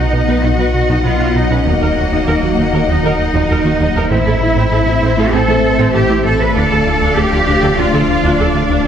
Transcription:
Already playing: sub bass B1, french horn section F#3 D#4, ambient pad F#3 B3 D#4 D#5, cello section D#4, violin section D#5 F#5
0.13 double bass section B1, analog synth bass B2, synth arpeggio sound B3, viola section D#4
0.28 double bass section B1, analog synth bass B3, synth arpeggio sound F#4, viola section B4
0.43 double bass section B1, analog synth bass B2, synth arpeggio sound B3, viola section D#4, cello section F#4
0.59 double bass section B1, analog synth bass B3, synth arpeggio sound F#4, viola section B4
0.74 analog synth bass B2
0.89 double bass section B1, analog synth bass B2, synth arpeggio sound B3, viola section D#4
1.05 double bass section B1, analog synth bass B2, synth arpeggio sound D#4, cello section F4, viola section B4
1.20 double bass section B1, analog synth bass B3, viola section F#4, synth arpeggio sound F#4
1.35 double bass section B1, analog synth bass B2, synth arpeggio sound B3, cello section D#4, viola section D#4
1.50 double bass section B1, analog synth bass B2, cello section C#4, synth arpeggio sound D#4, viola section B4
1.65 sub bass D#1, analog synth bass D#2, double bass section D#2, synth arpeggio sound D#3, ambient pad A#3, cello section A#3, viola section D#4
1.81 double bass section D#2, analog synth bass D#2, synth arpeggio sound D#4, viola section A#4
1.96 double bass section D#2, analog synth bass D#2, synth arpeggio sound D#4, viola section F#4
2.12 analog synth bass D#2, double bass section D#2, synth arpeggio sound D#3, viola section D#4
2.27 double bass section D#2, analog synth bass D#2, synth arpeggio sound D#4, viola section A#4
2.42 analog synth bass D#2, double bass section D#2, synth arpeggio sound F#3, viola section F#4
2.57 double bass section D#2, analog synth bass D#2, synth arpeggio sound D#3, viola section D#4
2.73 double bass section D#2, analog synth bass D#3, synth arpeggio sound A#3, viola section A#4
2.88 analog synth bass D#2, double bass section D#2, synth arpeggio sound D#3, cello section D#4, viola section D#4
3.03 double bass section D#2, analog synth bass D#3, synth arpeggio sound A#3, viola section A#4
3.19 analog synth bass D#2
3.34 analog synth bass D#2, double bass section D#2, synth arpeggio sound D#3, viola section D#4
3.49 analog synth bass D#2, double bass section D#2, synth arpeggio sound F#3, viola section A#4
3.65 double bass section D#2, analog synth bass D#3, synth arpeggio sound A#3, viola section F#4
3.80 analog synth bass D#2, double bass section D#2, synth arpeggio sound D#3, viola section D#4
3.95 analog synth bass D#2, double bass section D#2, synth arpeggio sound F#3, viola section A#4
4.10 sub bass A1, double bass section A1, analog synth bass A2, french horn section E3 C4, synth arpeggio sound A3, ambient pad A3 C4 E4 E5, viola section C4, cello section E4, violin section C5 E5
4.26 double bass section A1, analog synth bass A2, synth arpeggio sound A4, viola section A4
4.41 double bass section A1, analog synth bass A2, viola section E4, synth arpeggio sound A4
4.56 double bass section A1, analog synth bass A2, synth arpeggio sound A3, viola section C4
4.72 double bass section A1, analog synth bass A2, synth arpeggio sound A4, viola section A4
4.87 double bass section A1, analog synth bass A2, synth arpeggio sound C4, viola section E4
5.02 double bass section A1, analog synth bass A2, synth arpeggio sound A3, viola section C4
5.18 double bass section A1, analog synth bass A3, synth arpeggio sound E4, viola section A4
5.33 double bass section A1, analog synth bass A2, synth arpeggio sound A3, viola section C4, cello section A4
5.48 double bass section A1, analog synth bass A3, synth arpeggio sound E4, viola section A4
5.64 analog synth bass A2
5.79 double bass section A1, analog synth bass A2, synth arpeggio sound A3, viola section C4
5.94 double bass section A1, analog synth bass A2, synth arpeggio sound C4, cello section G4, viola section A4
6.10 double bass section A1, analog synth bass A3, synth arpeggio sound E4, viola section E4
6.25 double bass section A1, analog synth bass A2, synth arpeggio sound A3, viola section C4, cello section A4
6.40 double bass section A1, analog synth bass A2, synth arpeggio sound C4, viola section A4, cello section B4
6.55 sub bass D1, analog synth bass D2, double bass section D2, synth arpeggio sound D3, french horn section F3 D4, viola section D4, ambient pad D4 F4 D5, cello section A4, violin section D5 F5
6.71 analog synth bass D2, double bass section D2, synth arpeggio sound D4, viola section A4
6.86 analog synth bass D2, double bass section D2, synth arpeggio sound D4, viola section F4
7.01 analog synth bass D2, double bass section D2, synth arpeggio sound D3, viola section D4
7.16 analog synth bass D2, double bass section D2, synth arpeggio sound D4, cello section G4, viola section A4
7.32 analog synth bass D2, double bass section D2, synth arpeggio sound F3, viola section F4
7.47 analog synth bass D2, double bass section D2, synth arpeggio sound D3, viola section D4
7.63 double bass section D2, analog synth bass D3, synth arpeggio sound A3, viola section A4
7.78 analog synth bass D2, double bass section D2, synth arpeggio sound D3, viola section D4, cello section F4
7.93 double bass section D2, analog synth bass D3, synth arpeggio sound A3, viola section A4
8.08 analog synth bass D2
8.24 analog synth bass D2, double bass section D2, synth arpeggio sound D3, viola section D4
8.39 analog synth bass D2, double bass section D2, synth arpeggio sound F3, cello section D4, viola section A4
8.55 double bass section D2, analog synth bass D3, synth arpeggio sound A3, viola section F4
8.70 analog synth bass D2, double bass section D2, synth arpeggio sound D3, viola section D4

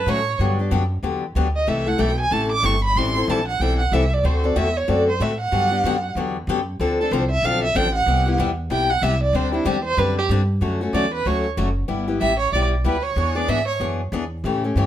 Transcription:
Already playing: violin B4
0.06 upright bass A2, steel-string acoustic guitar D3 F#3 A3 C#4 F#4, violin C#5
0.39 upright bass G2, steel-string acoustic guitar D3 F#3 B3 D4 G4
0.59 steel-string acoustic guitar B3 D4 G4
0.71 upright bass F#2, steel-string acoustic guitar D3 F#3 B3 D4 G4
1.03 upright bass E2, steel-string acoustic guitar D3 F#3 B3 D4 G4
1.35 upright bass D2, steel-string acoustic guitar D3 F#3 B3 D4 G4
1.56 violin D#5
1.67 upright bass C2, steel-string acoustic guitar C3 E3 A3 E4 A4, violin E5
1.86 steel-string acoustic guitar A3 E4 A4, violin F#5
1.98 upright bass B1, steel-string acoustic guitar C3 E3 A3 E4 A4, violin G5
2.20 violin G#5
2.31 upright bass A1, steel-string acoustic guitar C3 E3 A3 E4 A4, violin A5
2.52 violin D6
2.63 upright bass G1, steel-string acoustic guitar C3 E3 A3 E4 A4, violin C#6
2.84 violin B5
2.95 upright bass A1, steel-string acoustic guitar E3 G3 C4 E4 A4, violin C6
3.16 steel-string acoustic guitar C4 E4 A4
3.27 upright bass A#1, steel-string acoustic guitar E3 G3 C4 E4 A4, violin A5
3.48 violin F#5
3.60 upright bass B1, steel-string acoustic guitar E3 G3 C4 E4 A4, violin G5
3.79 violin F#5
3.92 upright bass C2, steel-string acoustic guitar E3 G3 C4 E4 A4, violin E5
4.13 violin D5
4.23 upright bass D2, steel-string acoustic guitar D3 A3 C4 F#4 A4, violin C5
4.44 steel-string acoustic guitar C4 F#4 A4, violin D5
4.56 upright bass E2, steel-string acoustic guitar D3 A3 C4 F#4 A4, violin E5
4.77 violin C#5
4.88 upright bass F#2, steel-string acoustic guitar D3 A3 C4 F#4 A4, violin D5
5.09 violin C5
5.20 upright bass A2, steel-string acoustic guitar D3 A3 C4 F#4 A4, violin E5
5.40 violin F#5
5.52 upright bass G2, steel-string acoustic guitar D3 F#3 B3 D4 G4
5.71 steel-string acoustic guitar B3 D4 G4
5.84 upright bass F#2, steel-string acoustic guitar D3 F#3 B3 D4 G4
6.15 upright bass E2, steel-string acoustic guitar D3 F#3 B3 D4 G4
6.47 upright bass F#2, steel-string acoustic guitar D3 F#3 B3 D4 G4
6.80 upright bass D2, steel-string acoustic guitar D3 F3 C4 D4 A4
7.00 steel-string acoustic guitar C4 D4 A4, violin A4
7.11 upright bass C2, steel-string acoustic guitar D3 F3 C4 D4 A4, violin C5
7.31 violin E5
7.42 upright bass B1, steel-string acoustic guitar D3 F3 C4 D4 A4, violin F5
7.64 violin E5
7.75 upright bass A1, steel-string acoustic guitar D3 F3 C4 D4 A4, violin G5
7.95 violin F#5
8.06 upright bass C2, steel-string acoustic guitar C3 G3 B3 E4 G4
8.26 steel-string acoustic guitar B3 E4 G4
8.38 upright bass E2, steel-string acoustic guitar C3 G3 B3 E4 G4
8.70 upright bass B1, steel-string acoustic guitar C3 G3 B3 E4 G4, violin G5
8.90 violin F#5
9.02 upright bass C2, steel-string acoustic guitar C3 G3 B3 E4 G4, violin E5
9.23 violin D5
9.33 upright bass D2, steel-string acoustic guitar D3 G3 C4 D4 G4, violin C5
9.53 steel-string acoustic guitar C4 D4 G4, violin E4
9.65 upright bass E2, steel-string acoustic guitar D3 G3 C4 D4 G4, violin G4
9.85 violin C5
9.97 upright bass F#2, steel-string acoustic guitar D3 G3 C4 D4 G4, violin B4
10.18 violin G4
10.29 upright bass G2, steel-string acoustic guitar D3 G3 C4 D4 G4
10.61 upright bass F#2, steel-string acoustic guitar D3 F#3 A3 C#4 F#4
10.81 steel-string acoustic guitar A3 C#4 F#4
10.93 upright bass E2, steel-string acoustic guitar D3 F#3 A3 C#4 F#4, violin D5
11.14 violin B4
11.25 upright bass D2, steel-string acoustic guitar D3 F#3 A3 C#4 F#4, violin C#5
11.57 upright bass F#1, steel-string acoustic guitar D3 F#3 A3 C#4 F#4
11.88 upright bass G1, steel-string acoustic guitar G3 B3 E4 G4
12.08 steel-string acoustic guitar B3 E4 G4
12.20 upright bass A1, steel-string acoustic guitar G3 B3 E4 G4, violin E5
12.39 violin C#5
12.52 upright bass B1, steel-string acoustic guitar G3 B3 E4 G4, violin D5
12.84 upright bass D2, steel-string acoustic guitar G3 B3 E4 G4, violin B4
13.03 violin C#5
13.16 upright bass E2, steel-string acoustic guitar E3 B3 D4 G#4
13.35 steel-string acoustic guitar B3 D4 G#4, violin D5
13.48 upright bass G#2, steel-string acoustic guitar E3 B3 D4 G#4, violin E5
13.67 violin C#5
13.80 upright bass F#2, steel-string acoustic guitar E3 B3 D4 G#4
14.12 upright bass E2, steel-string acoustic guitar E3 B3 D4 G#4
14.44 upright bass A2, steel-string acoustic guitar C#3 E3 A3 C#4 G4
14.64 steel-string acoustic guitar A3 C#4 G4
14.76 upright bass G2, steel-string acoustic guitar C#3 E3 A3 C#4 G4

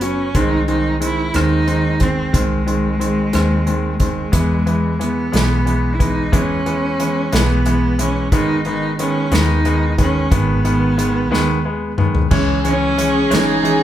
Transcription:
Already playing: fingered electric bass F#1
0.01 grand piano F#3 B3 C#4, cello C#4, closed hi-hat
0.35 fingered electric bass C2, grand piano D#3 G#3 C4, cello D#4, kick, closed hi-hat
0.68 grand piano D#3 G#3 C4, cello D#4, closed hi-hat
1.00 grand piano D#3 G#3 C4, cello E4, closed hi-hat
1.34 fingered electric bass D#2, grand piano D#3 G#3 C4, cello D#4, cross-stick, closed hi-hat
1.67 grand piano D#3 G#3 C4, closed hi-hat
2.00 grand piano D#3 G#3 C4, cello C4, kick, closed hi-hat
2.33 fingered electric bass C2, grand piano D#3 G#3 C4, cello G#3, kick, closed hi-hat
2.66 grand piano D#3 G#3 C4, closed hi-hat
2.99 grand piano D#3 G#3 C4, closed hi-hat
3.33 fingered electric bass D#2, grand piano D#3 G#3 C4, cross-stick, closed hi-hat
3.66 grand piano D#3 G#3 C4, closed hi-hat
3.99 grand piano D#3 G#3 C4, cello G#3, kick, closed hi-hat
4.32 fingered electric bass E2, grand piano E3 G#3 B3, kick, closed hi-hat
4.66 grand piano E3 G#3 B3, closed hi-hat
4.99 grand piano E3 G#3 B3, cello B3, closed hi-hat
5.32 fingered electric bass B1, grand piano E3 G#3 B3, snare, closed hi-hat
5.65 grand piano E3 G#3 B3, closed hi-hat
5.95 cello E4
5.99 grand piano E3 G#3 B3, cello D#4, kick, closed hi-hat
6.32 fingered electric bass E2, grand piano E3 G#3 B3, cello C#4, kick, closed hi-hat
6.66 grand piano E3 G#3 B3, closed hi-hat
6.99 grand piano E3 G#3 B3, closed hi-hat
7.32 fingered electric bass B1, grand piano E3 G#3 B3, cello B3, snare, closed hi-hat
7.66 grand piano E3 G#3 B3, closed hi-hat
7.99 grand piano E3 G#3 B3, cello C#4, closed hi-hat
8.32 fingered electric bass G#1, grand piano D#3 G#3 B3, cello D#4, kick, closed hi-hat
8.65 grand piano D#3 G#3 B3, cello D#4, closed hi-hat
8.99 grand piano D#3 G#3 B3, cello C#4, closed hi-hat
9.31 fingered electric bass D#2, grand piano D#3 G#3 B3, cello D#4, snare, closed hi-hat
9.65 grand piano D#3 G#3 B3, closed hi-hat
9.98 grand piano D#3 G#3 B3, cello C#4, kick, closed hi-hat
10.31 fingered electric bass G#1, grand piano D#3 G#3 B3, cello B3, kick, closed hi-hat
10.64 grand piano D#3 G#3 B3, closed hi-hat
10.97 grand piano D#3 G#3 B3, closed hi-hat
11.31 fingered electric bass D#2, grand piano D#3 G#3 B3, snare
11.65 grand piano G#3 B3
11.98 grand piano D#3 G#3 B3, mid tom
12.15 floor tom
12.31 fingered electric bass C#2, grand piano E3 G#3 C#4, violin section G#4, kick, crash
12.64 grand piano E3 G#3 C#4, cello C#4, closed hi-hat
12.98 grand piano E3 G#3 C#4, closed hi-hat
13.30 fingered electric bass G#1, grand piano E3 G#3 C#4, snare, closed hi-hat
13.34 cello D#4
13.63 grand piano E3 G#3 C#4, closed hi-hat

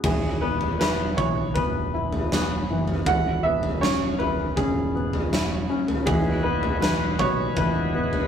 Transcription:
0.04 fingered electric bass E1, felt piano E3, grand piano G#4, kick, floor tom, crash
0.41 felt piano B3, grand piano B4
0.61 floor tom
0.79 felt piano E4, grand piano B4, snare
1.17 fingered electric bass B1, felt piano E3, grand piano C#5, kick, floor tom
1.54 fingered electric bass E1, felt piano B3, grand piano B4, kick, floor tom
1.94 felt piano E4
2.13 floor tom
2.32 felt piano B3, snare
2.69 fingered electric bass F#1, felt piano E3
2.88 floor tom
3.06 fingered electric bass E1, felt piano E3, grand piano F#5, kick, floor tom
3.43 felt piano B3, grand piano E5
3.63 floor tom
3.81 felt piano C#4, grand piano C#5, snare
4.19 fingered electric bass E1, felt piano E4, grand piano B4, floor tom
4.56 fingered electric bass E1, felt piano C#4, grand piano G#4, kick, floor tom
4.95 felt piano B3
5.13 floor tom
5.32 felt piano E4, snare
5.69 felt piano C#4
5.88 floor tom
6.06 fingered electric bass E1, tonewheel organ E3 F#3 G#3 B3 F#4, felt piano E3, grand piano G#4, kick, floor tom
6.43 felt piano B3, grand piano B4
6.63 floor tom
6.81 felt piano E3, grand piano B4, snare
7.19 fingered electric bass B1, felt piano B3, grand piano C#5, kick, floor tom
7.56 fingered electric bass E1, felt piano E3, grand piano B4, kick, floor tom
7.95 felt piano B3
8.13 floor tom

